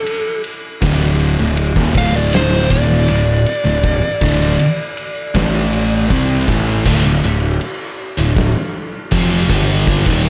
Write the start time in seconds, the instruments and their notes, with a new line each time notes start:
Already playing: lead electric guitar A4
0.06 ride
0.44 ride
0.82 picked electric bass D1, distorted electric guitar D2 A2 D3, kick, ride
1.20 ride
1.39 picked electric bass D1, distorted electric guitar D2 A2
1.57 ride
1.76 picked electric bass D#1, distorted electric guitar D#2 A#2, kick
1.95 picked electric bass D1, distorted electric guitar D2 A2 D3, lead electric guitar F5, kick, ride
2.16 lead electric guitar D5
2.33 lead electric guitar C5, snare, ride
2.70 picked electric bass D#1, distorted electric guitar D#2 A#2 D#3, lead electric guitar D5, kick, ride
2.92 snare
3.08 picked electric bass D1, distorted electric guitar D2 A2, ride
3.46 ride
3.65 picked electric bass D1, distorted electric guitar D2 A2
3.83 kick, ride
4.21 picked electric bass D1, distorted electric guitar D2 A2 D3, kick, ride
4.59 muted distorted electric guitar stroke, muted picked electric bass stroke, ride
4.97 ride
5.35 picked electric bass A1, distorted electric guitar A2 E3 A3, kick, snare, ride
5.73 ride
6.10 picked electric bass C2, distorted electric guitar C3 G3 C4, kick, ride
6.48 picked electric bass A1, distorted electric guitar A2 E3 A3, kick, ride
6.86 picked electric bass D1, distorted electric guitar D2 A2, kick, crash
7.05 picked electric bass D1, distorted electric guitar D2 A2
7.23 picked electric bass D1, distorted electric guitar D2 A2
7.61 crash
8.18 picked electric bass D1, distorted electric guitar D2 A2
8.36 kick, snare, crash
9.12 picked electric bass F1, distorted electric guitar F2 C3 F3, kick, crash
9.49 picked electric bass G1, distorted electric guitar G2 D3 G3, kick
9.87 kick, crash
10.06 picked electric bass D#1, distorted electric guitar D#2 A#2 D#3, kick